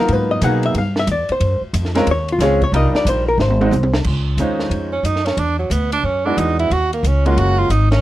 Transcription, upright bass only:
0.09 0.41 G#2 medium
0.41 0.74 B2 loud
0.75 1.06 G2 medium
1.07 1.27 E2 medium
1.29 muted upright bass stroke soft
1.40 1.60 F#2 medium
1.61 muted upright bass stroke soft
1.73 2.06 F2 loud
2.06 2.38 D#2 medium
2.39 2.71 C#2 medium
2.72 2.92 C2 medium
2.92 muted upright bass stroke soft
3.05 3.37 A#1 loud
3.38 3.71 G#1 medium
3.71 4.04 C2 loud
4.05 4.37 C#2 medium
4.37 4.69 D#2 medium
4.70 5.03 F2 medium
5.03 5.36 F#2 medium
5.37 5.69 E2 medium
5.70 6.03 D2 loud
6.03 6.36 F#2 medium
6.37 6.69 E2 medium
6.70 7.02 D#2 medium
7.03 7.35 C#2 medium
7.37 7.69 F#1 medium
7.69 8.01 G#1 medium

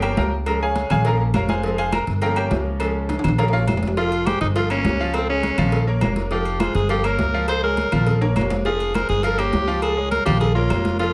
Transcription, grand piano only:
0.00 0.30 F3 medium
0.00 0.30 A#3 medium
0.00 0.30 C#4 medium
0.00 0.17 G4 medium
0.00 0.16 A#4 medium
0.00 0.17 C#5 medium
0.00 0.16 G5 loud
0.17 0.32 A#4 medium
0.17 0.32 F5 medium
0.17 0.32 G5 medium
0.17 0.32 A#5 medium
0.47 0.66 F3 medium
0.47 0.66 G#3 medium
0.47 0.67 C#4 medium
0.47 0.61 A#4 medium
0.47 0.61 A#5 medium
0.63 0.89 G#4 medium
0.63 0.89 C#5 medium
0.63 0.89 F5 medium
0.63 0.89 G#5 loud
0.91 1.05 G#4 medium
0.91 1.05 C#5 medium
0.91 1.05 F5 medium
0.91 1.05 G#5 loud
1.06 1.25 F3 medium
1.06 1.25 A#3 medium
1.06 1.26 C#4 medium
1.06 1.20 A#4 medium
1.06 1.20 C#5 medium
1.06 1.20 F5 medium
1.06 1.20 A#5 medium
1.35 1.49 A#4 medium
1.35 1.49 C#5 medium
1.35 1.48 F5 medium
1.35 1.49 A#5 medium
1.49 1.77 G#4 medium
1.49 1.77 C5 medium
1.49 1.77 F5 medium
1.49 1.76 G#5 medium
1.64 1.83 F3 medium
1.64 1.83 G#3 medium
1.64 1.84 C4 medium
1.78 1.93 G#4 medium
1.78 1.93 C5 medium
1.78 1.93 F5 medium
1.78 1.92 G#5 loud
1.93 2.02 A#4 medium
1.93 2.02 A#5 loud
2.22 2.77 F3 medium
2.22 2.78 A#3 medium
2.22 2.78 C#4 medium
2.22 2.36 A#4 medium
2.22 2.37 F5 medium
2.22 2.35 G5 medium
2.22 2.36 A#5 loud
2.37 2.51 G4 medium
2.37 2.51 A#4 medium
2.37 2.51 C#5 medium
2.37 2.51 G5 medium
2.80 3.22 F3 medium
2.80 3.22 G#3 medium
2.80 3.22 C#4 medium
3.38 3.58 F3 medium
3.38 3.58 A#3 medium
3.38 3.59 C#4 medium
3.38 3.52 A#4 medium
3.38 3.52 C#5 medium
3.38 3.51 F5 medium
3.38 3.53 A#5 loud
3.53 3.62 F4 medium
3.53 3.62 A#4 medium
3.53 3.62 C#5 medium
3.53 3.62 F5 loud
3.97 4.21 F3 medium
3.97 4.21 F4 medium
3.97 4.22 F5 medium
4.26 4.50 G#3 medium
4.26 4.51 G#4 medium
4.26 4.51 C5 medium
4.56 4.68 F3 medium
4.56 4.68 F4 medium
4.56 4.68 F5 medium
4.71 4.95 A#3 medium
4.71 4.95 A#4 medium
4.71 4.95 C#5 medium
5.00 5.24 F3 medium
5.00 5.24 F4 medium
5.00 5.24 F5 loud
5.29 5.53 G#3 medium
5.29 5.53 G#4 medium
5.29 5.53 C#5 medium
5.58 5.82 F3 medium
5.58 5.82 F4 loud
5.58 5.83 F5 loud
5.87 5.99 A#3 medium
5.87 5.99 A#4 medium
5.87 6.00 C#5 medium
6.02 6.26 A#3 medium
6.02 6.26 A#4 medium
6.02 6.26 C#5 medium
6.31 6.55 F3 medium
6.31 6.55 F4 medium
6.31 6.56 F5 medium
6.61 6.85 G#3 medium
6.61 6.85 G#4 medium
6.61 6.85 C5 medium
6.89 7.02 F3 medium
6.89 7.02 F4 medium
6.89 7.02 F5 medium
7.04 7.28 A#3 medium
7.04 7.29 A#4 medium
7.04 7.29 C#5 medium
7.34 7.58 F3 medium
7.34 7.58 F4 medium
7.34 7.58 F5 medium
7.63 7.87 G#3 medium
7.63 7.87 G#4 medium
7.63 7.87 C#5 medium
7.92 8.16 F3 medium
7.92 8.16 F4 loud
7.92 8.16 F5 medium
8.21 8.33 A#3 medium
8.21 8.33 A#4 medium
8.21 8.34 C#5 medium
8.36 8.60 A#3 medium
8.36 8.60 A#4 medium
8.36 8.60 C#5 medium
8.65 8.89 F3 medium
8.65 8.89 F4 medium
8.65 8.90 F5 medium
8.94 9.18 G#3 medium
8.94 9.19 G#4 medium
8.94 9.19 C5 medium
9.24 9.36 F3 medium
9.24 9.36 F4 medium
9.24 9.36 F5 medium
9.38 9.62 A#3 medium
9.38 9.62 A#4 medium
9.38 9.62 C#5 medium
9.67 9.92 F3 loud
9.67 9.92 F4 medium
9.67 9.92 F5 medium
9.97 10.21 G#3 medium
9.97 10.21 G#4 medium
9.97 10.21 C#5 medium
10.26 10.50 F3 loud
10.26 10.50 F4 loud
10.26 10.50 F5 loud
10.55 10.67 A#3 medium
10.55 10.68 A#4 medium
10.55 10.68 C#5 medium
10.70 10.94 A#3 medium
10.70 10.94 A#4 medium
10.70 10.94 C#5 medium
11.00 11.13 F3 medium
11.00 11.13 F4 medium
11.00 11.13 F5 medium

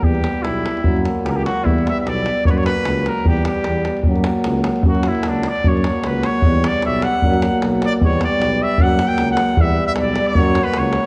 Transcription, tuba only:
0.03 0.25 E2 loud
0.44 0.66 B1 medium
0.84 1.07 F#2 medium
1.25 1.47 C#2 medium
1.65 1.87 E2 medium
2.06 2.28 B1 medium
2.47 2.69 F#2 loud
2.85 3.08 C#2 medium
3.25 3.47 E2 loud
3.66 3.88 E2 medium
4.07 4.28 F#2 medium
4.46 4.68 C#2 loud
4.85 5.07 F#2 loud
5.27 5.48 C#2 medium
5.66 5.87 F#2 loud
6.05 6.26 C#2 medium
6.45 6.67 E2 loud
6.85 7.06 B1 medium
7.24 7.45 F#2 loud
7.62 7.84 B1 medium
8.01 8.22 E2 loud
8.39 8.61 B1 medium
8.79 9.01 F#2 loud
9.19 9.40 C#2 medium
9.57 9.79 E2 loud
9.97 10.18 B1 medium
10.38 10.59 F#2 loud
10.76 10.97 C#2 loud

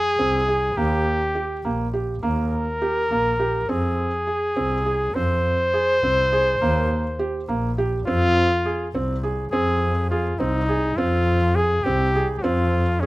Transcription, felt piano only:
0.00 0.10 G#4 medium
0.19 0.39 C4 medium
0.48 0.69 G#4 medium
0.77 1.18 A#3 medium
1.35 1.56 G4 medium
1.65 1.85 A#3 medium
1.94 2.14 G4 medium
2.23 2.64 A#3 medium
2.82 3.02 G4 medium
3.11 3.31 A#3 medium
3.39 3.60 G4 medium
3.69 4.10 C4 medium
4.27 4.48 G#4 medium
4.56 4.77 C4 medium
4.86 5.06 G#4 medium
5.15 5.56 C4 medium
5.73 5.94 G#4 medium
6.03 6.24 C4 medium
6.32 6.53 G#4 medium
6.61 7.02 A#3 medium
7.19 7.40 G4 medium
7.48 7.69 A#3 medium
7.78 7.99 G4 medium
8.07 8.48 C4 medium
8.65 8.86 G#4 medium
8.95 9.15 C4 medium
9.23 9.44 G#4 medium
9.53 9.94 C4 medium
10.11 10.32 G#4 medium
10.40 10.60 C4 medium
10.69 10.89 G#4 medium
10.98 11.39 C4 medium
11.56 11.77 G#4 medium
11.86 12.06 C4 medium
12.15 12.36 G#4 medium
12.44 12.85 C4 medium
13.03 13.06 G#4 medium

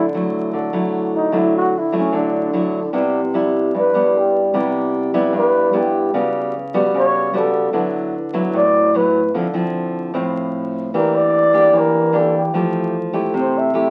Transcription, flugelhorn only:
1.16 1.40 D#4 medium
1.38 1.56 E4 medium
1.57 1.80 F#4 loud
1.78 1.96 E4 medium
1.97 2.19 C#4 medium
2.17 2.95 D4 medium
3.79 4.19 B4 medium
4.18 4.56 G4 medium
5.38 5.79 B4 medium
5.78 6.16 G4 medium
6.97 7.39 C#5 loud
7.37 7.75 A4 medium
8.56 8.98 D5 medium
8.96 9.35 B4 medium
10.97 11.17 A#4 medium
11.15 11.80 D5 loud
11.78 12.20 A#4 medium
12.19 12.37 A4 medium
12.38 12.55 G4 medium
13.40 13.59 C5 medium
13.58 13.90 E5 medium

